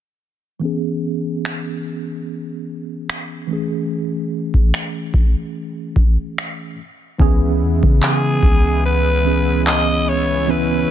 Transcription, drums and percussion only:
1.45 finger snap loud
3.10 finger snap loud
4.54 kick medium
4.74 finger snap loud
5.14 kick medium
5.96 kick medium
6.38 finger snap loud
7.20 kick loud
7.83 kick loud
8.03 clap loud
8.43 kick loud
9.67 clap loud

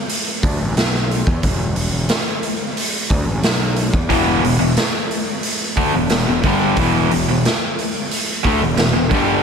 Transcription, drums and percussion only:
0.09 open hi-hat medium
0.43 kick loud
0.43 open hi-hat medium
0.77 snare loud
0.77 open hi-hat medium
0.95 snare soft
1.11 open hi-hat soft
1.27 kick loud
1.43 kick medium
1.43 open hi-hat medium
1.76 open hi-hat soft
2.09 snare loud
2.09 open hi-hat medium
2.43 open hi-hat medium
2.77 open hi-hat medium
3.10 kick loud
3.10 open hi-hat medium
3.43 snare loud
3.43 open hi-hat medium
3.76 open hi-hat soft
3.94 kick loud
4.10 kick loud
4.10 open hi-hat medium
4.45 open hi-hat medium
4.77 snare loud
4.77 open hi-hat medium
5.11 open hi-hat soft
5.43 open hi-hat medium
5.77 kick loud
5.77 open hi-hat soft
6.10 snare loud
6.10 open hi-hat medium
6.43 kick loud
6.43 open hi-hat soft
6.77 kick loud
6.77 open hi-hat medium
7.11 open hi-hat soft
7.45 snare loud
7.45 open hi-hat medium
7.79 open hi-hat soft
8.11 open hi-hat medium
8.45 kick loud
8.45 open hi-hat medium
8.77 snare loud
8.77 open hi-hat medium
9.11 kick loud
9.11 open hi-hat medium

